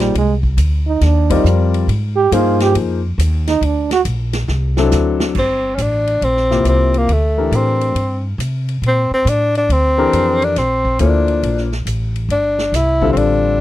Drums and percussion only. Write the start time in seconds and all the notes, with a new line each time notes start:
0.15 ride
0.43 kick
0.58 hi-hat pedal, ride
1.01 snare, ride
1.30 kick, ride
1.45 hi-hat pedal
1.74 ride
1.89 ride
2.32 hi-hat pedal, ride
2.60 snare, ride
2.75 ride
3.19 hi-hat pedal, ride
3.47 snare, ride
3.62 ride
3.91 snare, ride
4.05 hi-hat pedal, ride
4.33 snare, ride
4.48 snare
4.77 snare
4.91 snare, hi-hat pedal
5.20 snare
5.35 kick, crash
5.78 hi-hat pedal, ride
6.07 ride
6.22 ride
6.37 snare
6.51 snare
6.65 hi-hat pedal, ride
6.94 ride
7.09 ride
7.52 hi-hat pedal, ride
7.81 ride
7.96 ride
8.40 hi-hat pedal, ride
8.68 ride
8.83 ride
9.27 hi-hat pedal, ride
9.55 ride
9.70 ride
10.13 hi-hat pedal, ride
10.42 ride
10.56 snare, ride
10.85 kick
10.99 hi-hat pedal, ride
11.28 ride
11.43 ride
11.57 snare
11.72 snare
11.87 hi-hat pedal, ride
12.16 ride
12.30 ride
12.58 snare
12.74 snare, hi-hat pedal, ride
13.02 kick
13.17 ride